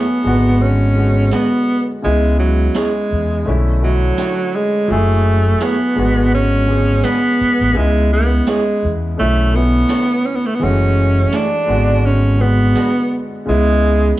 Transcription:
0.00 0.17 F#3 medium
0.00 0.17 A3 medium
0.00 0.63 B3 medium
0.00 0.18 E4 medium
0.00 0.19 G#4 medium
0.23 1.29 G#1 medium
0.23 0.83 D3 medium
0.23 0.83 G#3 medium
0.23 0.84 B3 medium
0.23 0.85 F#4 medium
0.62 1.34 C#4 medium
0.95 1.70 D3 medium
0.95 1.71 G#3 soft
0.95 1.72 B3 medium
0.95 1.72 F#4 medium
1.32 1.47 G#3 medium
1.32 1.87 B3 medium
1.32 1.47 D4 medium
1.32 1.47 F#4 medium
1.32 1.47 B4 medium
2.02 2.66 C#2 loud
2.02 3.03 C#3 medium
2.02 3.03 G#3 medium
2.02 2.37 G#3 medium
2.02 3.04 B3 medium
2.02 3.04 E4 medium
2.39 2.78 F#3 medium
2.75 3.57 G#3 medium
2.75 2.90 B3 medium
2.75 2.90 E4 medium
2.75 2.90 G#4 medium
2.75 2.90 C#5 medium
3.12 3.43 E2 medium
3.45 4.08 B1 medium
3.45 3.72 D3 medium
3.45 3.72 A3 medium
3.45 3.73 C#4 medium
3.45 3.73 E4 medium
3.81 4.56 D3 medium
3.81 4.57 F#3 medium
3.81 4.57 A3 medium
3.81 4.58 C#4 medium
3.81 4.58 E4 medium
4.18 4.33 D4 medium
4.18 4.33 E4 medium
4.18 4.33 A4 medium
4.18 4.33 C#5 medium
4.55 4.92 G#3 medium
4.88 5.52 F#1 loud
4.88 5.88 F#3 medium
4.88 4.97 G#3 soft
4.88 5.63 A3 medium
4.88 5.90 E4 medium
4.92 5.92 A3 medium
4.92 5.90 G#4 medium
5.61 5.76 A3 medium
5.61 6.33 B3 medium
5.61 5.76 E4 medium
5.61 5.76 G#4 medium
5.61 5.76 C#5 medium
5.95 7.01 G#1 medium
5.95 6.54 D3 medium
5.95 6.55 G#3 medium
5.95 6.56 B3 medium
5.95 6.56 F#4 medium
6.35 7.06 C#4 loud
6.66 7.42 D3 medium
6.66 7.42 G#3 medium
6.66 7.43 B3 medium
6.66 7.44 G#4 medium
7.04 7.19 G#3 medium
7.04 7.78 B3 loud
7.04 7.19 D4 medium
7.04 7.19 F#4 medium
7.04 7.19 B4 medium
7.41 muted fingered electric bass stroke soft
7.61 7.74 A1 medium
7.73 8.74 C#3 medium
7.73 8.75 G#3 medium
7.73 8.12 G#3 medium
7.73 8.75 B3 medium
7.73 8.76 E4 medium
7.78 8.38 C#2 loud
8.13 8.50 B3 medium
8.47 8.93 G#3 medium
8.47 8.62 B3 medium
8.47 8.62 E4 medium
8.47 8.62 G#4 medium
8.47 8.62 C#5 medium
8.85 9.14 E2 medium
9.17 9.81 B1 medium
9.17 9.43 D3 medium
9.17 9.44 A3 medium
9.17 9.57 A3 loud
9.17 9.44 C#4 medium
9.17 9.45 E4 medium
9.53 10.28 D3 medium
9.53 10.28 A3 soft
9.53 10.27 B3 loud
9.53 10.29 C#4 soft
9.53 10.30 E4 medium
9.89 10.04 D4 medium
9.89 10.05 E4 medium
9.89 10.05 A4 medium
9.89 10.05 C#5 medium
10.26 10.37 C#4 medium
10.36 10.48 B3 medium
10.46 10.56 A3 medium
10.55 10.65 B3 medium
10.59 11.24 F#1 loud
10.59 11.60 E3 medium
10.59 11.61 G#3 medium
10.59 11.61 A3 medium
10.59 11.62 F#4 medium
10.64 11.37 C#4 loud
11.33 11.48 A3 medium
11.33 12.07 D4 loud
11.33 11.48 E4 medium
11.33 11.48 G#4 medium
11.33 11.48 C#5 medium
11.66 12.72 G#1 loud
11.66 12.26 D3 medium
11.66 12.26 G#3 medium
11.66 12.27 B3 medium
11.66 12.27 F#4 medium
12.06 12.43 C#4 loud
12.38 13.13 D3 medium
12.38 13.14 G#3 soft
12.38 13.14 B3 medium
12.38 13.22 B3 medium
12.38 13.15 F#4 medium
12.76 12.90 G#3 medium
12.76 12.91 D4 medium
12.76 12.91 F#4 medium
12.76 12.91 B4 medium
13.46 14.09 C#2 loud
13.46 14.20 C#3 medium
13.46 14.20 G#3 medium
13.46 14.16 G#3 loud
13.46 14.20 B3 medium
13.46 14.20 E4 medium

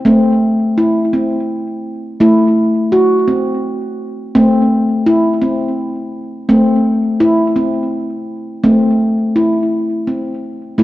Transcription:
0.05 1.16 A3 medium
0.05 0.77 C4 medium
0.78 1.13 E4 medium
1.13 1.85 C4 medium
2.20 3.31 A3 medium
2.20 2.92 E4 medium
2.92 3.28 F#4 medium
3.28 3.99 C4 medium
4.35 5.46 A3 medium
4.35 5.06 C4 loud
5.06 5.42 E4 medium
5.42 6.13 C4 medium
6.49 7.60 A3 medium
6.49 7.21 C4 medium
7.20 7.56 E4 medium
7.56 8.28 C4 medium
8.64 9.75 A3 medium
8.64 9.35 C4 medium
9.36 10.07 E4 medium
10.07 10.79 C4 medium
10.78 10.83 A3 medium
10.78 10.83 E4 medium

